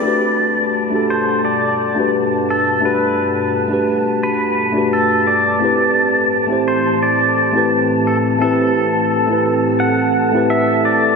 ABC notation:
X:1
M:4/4
L:1/16
Q:1/4=86
K:G
V:1 name="Synth texture"
a16- | a16- | a16- | a16 |]
V:2 name="Pedal steel guitar"
d6 c2 d4 z2 A2 | B8 B4 A2 d2- | d6 c2 d4 z2 A2 | A8 f4 e2 d2 |]
V:3 name="Tine electric piano"
[A,DFGB]4- [A,DFGB] [A,DFGA]6 [A,DFGB]4- [A,DFGB] | [A,DFGB]4- [A,DFGB] [A,DFGB]6 [A,DFGB]4- [A,DFGB] | [A,CEGB]4- [A,CEGB] [A,CEGc]6 [A,CEGB]4- [A,CEGB] | [A,CEGB]4- [A,CEGB] [A,CEGB]6 [A,CEGB]4- [A,CEGB] |]
V:4 name="Analog synth pad"
[G,,B,,G,Af]16- | [G,,B,,G,Af]16 | [A,,E,CGA]16- | [A,,E,CGA]16 |]